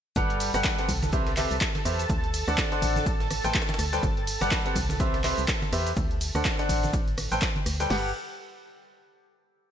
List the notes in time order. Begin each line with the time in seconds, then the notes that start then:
0.16 G1 G3 G4 A4 B4 F#5 A5, kick, closed hi-hat, tambourine, high conga, cabasa, shaker
0.30 closed hi-hat
0.40 open hi-hat, ride, tambourine, cabasa, shaker
0.54 G1 G3 G4 A4 B4 F#5, cross-stick, closed hi-hat, tambourine, high conga, cabasa
0.64 kick, snare, clap, closed hi-hat, cabasa, shaker
0.78 C4 G4 A4 B4 F#5, closed hi-hat
0.89 C2, kick, open hi-hat, ride, tambourine, cabasa, shaker
1.03 snare, closed hi-hat, tambourine, high conga, cabasa
1.12 C4 G4 B4 C5 E5, kick, closed hi-hat, tambourine, cabasa, shaker
1.27 snare, closed hi-hat
1.37 C4 G4 B4 C5 E5, cross-stick, clap, open hi-hat, ride, tambourine, high conga, cabasa, shaker
1.51 C2, closed hi-hat, tambourine, cabasa
1.61 kick, snare, clap, closed hi-hat, cabasa, shaker
1.75 snare, closed hi-hat, high conga
1.85 E2 G4 B4 C5 E5, cross-stick, open hi-hat, ride, tambourine, cabasa, shaker
1.99 closed hi-hat, tambourine, cabasa
2.09 D2, kick, closed hi-hat, tambourine, high conga, cabasa, shaker
2.24 closed hi-hat
2.34 open hi-hat, ride, tambourine, cabasa, shaker
2.47 D2 D4 A4 C5 D5 F#5, cross-stick, closed hi-hat, tambourine, high conga, cabasa
2.58 kick, snare, clap, closed hi-hat, cabasa, shaker
2.72 D4 A4 C5 D5 F#5, closed hi-hat
2.82 A1, kick, open hi-hat, ride, tambourine, cabasa, shaker
2.96 snare, closed hi-hat, tambourine, high conga, cabasa
3.06 kick, closed hi-hat, tambourine, cabasa, shaker
3.20 snare, closed hi-hat
3.31 cross-stick, open hi-hat, ride, tambourine, high conga, cabasa, shaker
3.44 A1 A3 A4 B4 C5 G5, closed hi-hat, tambourine, cabasa
3.54 kick, snare, clap, closed hi-hat, cabasa, shaker
3.62 snare, shaker
3.69 snare, closed hi-hat, high conga, shaker
3.74 snare, shaker
3.79 D2, cross-stick, open hi-hat, ride, tambourine, cabasa, shaker
3.93 G3 A4 B4 C5 G5, closed hi-hat, tambourine, cabasa
4.03 G1, kick, closed hi-hat, tambourine, high conga, cabasa, shaker
4.17 closed hi-hat
4.27 open hi-hat, ride, tambourine, cabasa, shaker
4.41 G1 G3 G4 A4 B4 F#5, cross-stick, closed hi-hat, tambourine, high conga, cabasa
4.51 kick, snare, clap, closed hi-hat, tambourine, cabasa, shaker
4.65 C4 G4 A4 B4 F#5, closed hi-hat
4.75 C2, kick, open hi-hat, ride, tambourine, cabasa, shaker
4.89 snare, closed hi-hat, tambourine, high conga, cabasa
5.00 C4 G4 B4 C5 E5, kick, closed hi-hat, tambourine, cabasa, shaker
5.14 snare, closed hi-hat
5.24 C4 G4 B4 C5 E5, cross-stick, clap, open hi-hat, ride, tambourine, high conga, cabasa, shaker
5.38 C2, closed hi-hat, tambourine, cabasa
5.48 kick, snare, clap, closed hi-hat, tambourine, cabasa, shaker
5.62 snare, closed hi-hat, high conga
5.72 E2 G4 B4 C5 E5, cross-stick, open hi-hat, ride, tambourine, cabasa, shaker
5.87 closed hi-hat, tambourine, cabasa
5.97 D2, kick, closed hi-hat, tambourine, high conga, cabasa, shaker
6.11 closed hi-hat
6.21 open hi-hat, ride, tambourine, cabasa, shaker
6.35 D2 D4 A4 C5 D5 F#5, cross-stick, closed hi-hat, tambourine, high conga, cabasa
6.45 kick, snare, clap, closed hi-hat, tambourine, cabasa, shaker
6.59 D4 A4 C5 D5 F#5, closed hi-hat
6.69 A1, kick, open hi-hat, ride, tambourine, cabasa, shaker
6.83 snare, closed hi-hat, tambourine, high conga, cabasa
6.93 kick, closed hi-hat, tambourine, cabasa, shaker
7.08 closed hi-hat
7.18 cross-stick, open hi-hat, ride, tambourine, high conga, cabasa, shaker
7.32 A1 A3 A4 B4 C5 G5, closed hi-hat, tambourine, cabasa
7.42 kick, snare, clap, closed hi-hat, cabasa, shaker
7.56 closed hi-hat, high conga
7.66 D2, cross-stick, open hi-hat, ride, tambourine, cabasa, shaker
7.80 G3 A4 B4 C5 G5, closed hi-hat, tambourine, cabasa
7.90 G1 G4 A4 B4 F#5, snare, crash